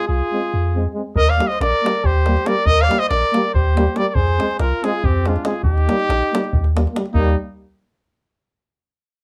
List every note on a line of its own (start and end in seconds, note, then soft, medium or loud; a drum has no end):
0.08 0.22 C2 loud
0.08 0.91 F4 medium
0.08 0.91 G#4 medium
0.33 0.41 G#3 medium
0.33 0.41 C4 medium
0.54 0.87 F2 medium
0.76 0.84 G#3 medium
0.76 0.84 C4 medium
0.94 1.02 G#3 medium
0.94 1.04 C4 soft
1.16 1.40 D#2 loud
1.16 1.31 A#4 loud
1.16 1.32 D#5 loud
1.16 davul low medium
1.28 1.51 D5 medium
1.28 1.49 F5 loud
1.28 davul high soft
1.39 1.47 G3 medium
1.39 1.47 A#3 medium
1.39 davul high medium
1.48 1.59 C5 medium
1.48 1.60 D#5 loud
1.52 davul high soft
1.60 1.74 A#1 loud
1.60 2.06 A#4 medium
1.60 2.08 D5 loud
1.60 davul high medium
1.83 1.93 G3 medium
1.83 1.91 A#3 medium
1.83 davul high medium
1.95 davul high soft
2.04 2.38 D#2 loud
2.04 2.48 G4 loud
2.04 2.49 C5 medium
2.04 davul low medium
2.26 2.35 G3 medium
2.26 2.35 A#3 medium
2.26 davul high medium
2.37 davul high soft
2.45 2.55 G3 medium
2.45 2.53 A#3 medium
2.45 2.67 A#4 medium
2.45 2.68 D5 loud
2.45 davul high medium
2.66 2.90 D#2 medium
2.66 2.85 A#4 loud
2.66 2.83 D#5 loud
2.66 davul low medium
2.78 3.01 F5 loud
2.78 davul high soft
2.84 3.00 D5 medium
2.89 2.97 G3 medium
2.89 2.98 A#3 medium
2.89 davul high medium
2.99 3.09 C5 loud
2.99 3.09 D#5 loud
2.99 davul high soft
3.09 3.24 A#1 loud
3.09 3.51 A#4 medium
3.09 3.51 D5 loud
3.09 davul high medium
3.33 3.43 G3 medium
3.33 3.41 A#3 medium
3.33 davul high medium
3.44 davul high soft
3.54 3.88 D#2 loud
3.54 3.99 G4 medium
3.54 3.99 C5 medium
3.54 davul low medium
3.76 3.85 G3 medium
3.76 3.84 A#3 medium
3.76 davul high medium
3.87 davul high soft
3.94 4.05 G3 medium
3.94 4.02 A#3 medium
3.94 4.10 A#4 medium
3.94 4.09 D5 loud
3.94 davul high medium
4.09 4.18 A#4 medium
4.09 4.16 D5 medium
4.15 4.40 F2 loud
4.15 4.59 G#4 loud
4.15 4.59 C5 loud
4.15 davul low medium
4.27 davul high soft
4.39 4.49 G#3 medium
4.39 4.48 C4 medium
4.39 davul high medium
4.51 davul high soft
4.59 4.73 C2 loud
4.59 4.86 F4 medium
4.59 4.86 A#4 medium
4.59 davul high medium
4.83 4.93 G#3 medium
4.83 4.92 C4 medium
4.83 5.06 F4 medium
4.83 5.07 G#4 loud
4.83 davul high medium
5.04 5.37 F2 medium
5.04 5.29 C4 medium
5.04 5.30 G4 medium
5.04 davul low medium
5.26 5.35 G#3 medium
5.26 5.35 C4 medium
5.26 5.48 D4 medium
5.26 5.47 F4 medium
5.26 davul high medium
5.36 davul high soft
5.45 5.53 G#3 medium
5.45 5.53 C4 medium
5.45 5.64 F4 medium
5.45 5.64 G#4 medium
5.45 davul high medium
5.63 5.89 D#2 loud
5.63 6.71 D#4 medium
5.63 6.71 G4 loud
5.63 davul low medium
5.78 davul high soft
5.87 5.98 G3 medium
5.87 5.96 A#3 medium
5.87 davul high medium
6.00 davul high soft
6.09 6.22 A#1 loud
6.09 davul high medium
6.23 davul high soft
6.33 6.42 G3 medium
6.33 6.41 A#3 medium
6.33 davul high medium
6.44 davul high soft
6.53 6.87 D#2 medium
6.53 davul low medium
6.64 davul high soft
6.76 6.83 G3 medium
6.76 6.84 A#3 medium
6.76 davul high medium
6.87 davul high soft
6.92 7.00 A#3 medium
6.96 7.04 G3 medium
6.96 davul high medium
7.06 davul high soft
7.13 7.36 D#2 loud
7.13 7.36 G3 medium
7.13 7.35 A#3 medium
7.13 7.36 A#3 medium
7.13 7.36 D#4 loud
7.13 davul low medium